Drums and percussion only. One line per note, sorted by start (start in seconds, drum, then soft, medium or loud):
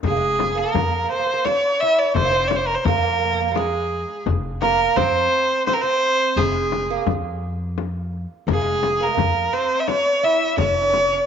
0.03 tombak dum medium
0.03 frame drum medium
0.39 tombak tek medium
0.39 frame drum medium
0.75 tombak dum medium
0.75 frame drum medium
1.45 tombak tek medium
1.45 frame drum medium
1.97 tombak ka soft
2.15 tombak dum medium
2.15 frame drum medium
2.51 tombak tek medium
2.51 frame drum medium
2.85 frame drum medium
2.85 tombak dum medium
3.56 tombak tek medium
3.56 frame drum medium
4.10 tombak ka soft
4.26 frame drum medium
4.26 tombak dum medium
4.62 tombak tek medium
4.62 frame drum medium
4.97 frame drum medium
4.97 tombak dum medium
5.67 tombak tek medium
5.67 frame drum medium
6.21 tombak ka soft
6.38 frame drum medium
6.38 tombak dum medium
6.72 tombak tek medium
6.72 frame drum medium
7.07 frame drum medium
7.07 tombak dum medium
7.78 tombak tek medium
7.78 frame drum medium
8.13 tombak ka soft
8.48 frame drum medium
8.48 tombak dum medium
8.83 tombak tek medium
8.83 frame drum medium
9.17 tombak dum medium
9.17 frame drum medium
9.88 tombak tek medium
9.88 frame drum medium
10.41 tombak ka soft
10.57 tombak dum medium
10.57 frame drum medium
10.93 tombak tek medium
10.93 frame drum medium